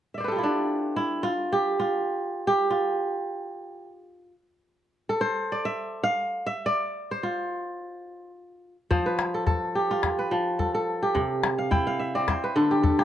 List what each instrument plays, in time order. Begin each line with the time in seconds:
0.14 kora D5 E5
0.20 kora B4 C5
0.28 kora G4 A4
0.36 kora E4 F4
0.43 kora D4
0.96 kora E4
1.23 kora F4
1.53 kora G4
1.80 kora F4
2.47 kora G4
2.70 kora F4
5.09 kora A4
5.21 kora C5
5.52 kora D5
5.65 kora E5
6.04 kora F5
6.46 kora E5
6.66 kora D5
7.11 kora C5
7.23 kora F4
8.91 kora F3 C5, calabash thump, calabash click
9.06 kora B4
9.19 calabash click
9.34 kora A4
9.47 kora A4, calabash thump, calabash click
9.75 kora G4
9.91 kora F4
10.03 calabash thump, calabash click
10.19 kora B4
10.31 kora F3
10.59 kora A4, calabash thump
10.74 kora A4
11.03 kora G4
11.15 kora C3, calabash thump, calabash click
11.43 calabash click
11.58 kora F5
11.71 kora E4 G5, calabash thump, calabash click
11.87 kora F5
11.99 kora E5
12.15 kora C4 D5
12.28 kora C5, calabash thump, calabash click
12.44 kora B4
12.56 kora D3 A4
12.71 kora G4
12.83 kora A4, calabash thump
12.99 kora F4 G4, calabash click